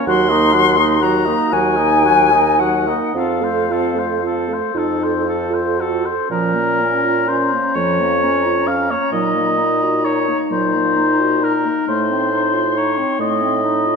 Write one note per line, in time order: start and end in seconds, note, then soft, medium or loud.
0.06 1.34 D#2 medium
0.06 0.32 F#3 medium
0.06 0.33 F#4 medium
0.06 0.31 F#5 medium
0.06 1.04 C6 loud
0.30 0.56 A#3 medium
0.30 0.55 D#4 medium
0.30 0.55 D#5 medium
0.53 0.79 F#3 medium
0.53 0.80 F#4 medium
0.53 0.78 F#5 medium
0.77 1.02 A#3 medium
0.77 1.01 D#4 medium
0.77 1.00 D#5 medium
1.01 1.29 F#3 medium
1.01 1.29 F#4 medium
1.01 1.27 F#5 medium
1.01 1.54 A#5 loud
1.25 1.55 A#3 medium
1.25 1.54 D#4 medium
1.25 1.53 D#5 medium
1.52 2.95 D#2 medium
1.52 1.80 F#3 medium
1.52 1.79 F#4 medium
1.52 1.78 F#5 medium
1.52 2.61 G#5 loud
1.76 2.05 A#3 medium
1.76 2.04 D#4 medium
1.76 2.04 D#5 medium
2.04 2.33 F#3 medium
2.04 2.33 F#4 medium
2.04 2.34 F#5 medium
2.32 2.62 A#3 medium
2.32 2.60 D#4 medium
2.32 2.62 D#5 medium
2.59 2.89 F#3 medium
2.59 2.89 F#4 medium
2.59 3.15 F#5 medium
2.59 2.90 F#5 medium
2.87 3.14 A#3 medium
2.87 3.14 D#4 medium
2.87 3.15 D#5 soft
3.14 4.56 F2 medium
3.14 3.44 C4 medium
3.14 3.43 F4 medium
3.14 3.45 A4 medium
3.14 4.71 F5 medium
3.41 3.71 A3 medium
3.41 3.71 A4 medium
3.41 3.73 C5 medium
3.69 3.98 C4 medium
3.69 3.97 F4 medium
3.69 4.00 A4 medium
3.96 4.21 A3 soft
3.96 4.22 A4 medium
3.96 4.24 C5 soft
4.22 4.50 C4 medium
4.22 4.50 F4 soft
4.26 4.55 A4 medium
4.48 4.74 A3 soft
4.48 4.76 A4 medium
4.53 4.79 C5 soft
4.74 6.12 F2 medium
4.74 5.26 D#4 medium
4.74 5.01 F4 soft
4.74 5.05 A4 medium
4.99 5.24 A4 medium
5.03 5.27 C5 soft
5.25 5.79 F4 medium
5.25 5.52 F4 soft
5.29 5.55 A4 soft
5.50 5.80 A4 soft
5.50 5.82 C5 soft
5.78 6.06 F4 soft
5.78 6.14 F#4 medium
5.78 6.07 A4 medium
6.05 6.29 A4 soft
6.05 6.31 C5 soft
6.29 7.52 A#2 medium
6.29 6.56 F3 medium
6.29 9.14 C#4 medium
6.29 7.30 A#4 medium
6.29 11.89 A#5 medium
6.55 6.81 A#3 medium
6.80 7.06 C#4 medium
7.04 7.30 F4 soft
7.28 7.54 C#4 soft
7.28 7.76 C5 medium
7.52 7.78 A#3 soft
7.75 8.90 F2 medium
7.75 8.01 F3 medium
7.75 8.69 C#5 medium
8.00 8.25 A#3 medium
8.23 8.47 C#4 medium
8.46 8.69 F4 medium
8.67 8.92 C#4 medium
8.67 8.92 F5 medium
8.90 9.12 A#3 soft
8.90 9.12 C#5 medium
9.12 10.28 A#2 medium
9.12 9.37 F#3 medium
9.12 13.96 D#4 medium
9.12 10.06 D#5 medium
9.35 9.59 A#3 medium
9.57 9.83 D#4 soft
9.82 10.06 F#4 medium
10.05 10.29 D#4 medium
10.05 10.38 C#5 medium
10.28 10.52 A#3 soft
10.50 11.65 A#2 medium
10.50 10.76 F#3 soft
10.50 11.45 C5 medium
10.74 10.98 A#3 soft
10.96 11.21 D#4 medium
11.20 11.43 F#4 soft
11.42 11.66 D#4 medium
11.42 11.88 A#4 medium
11.65 11.87 A#3 soft
11.87 12.97 A2 medium
11.87 12.11 A3 medium
11.87 12.79 C5 medium
11.87 13.96 C6 medium
12.10 12.33 C4 medium
12.31 12.55 D#4 medium
12.53 12.78 F4 medium
12.76 12.99 D#4 medium
12.76 13.20 C#5 medium
12.97 13.20 C4 soft
13.19 13.96 A2 medium
13.19 13.43 A3 medium
13.19 13.96 D#5 medium
13.42 13.65 C4 medium
13.63 13.87 D#4 medium
13.86 13.96 F4 soft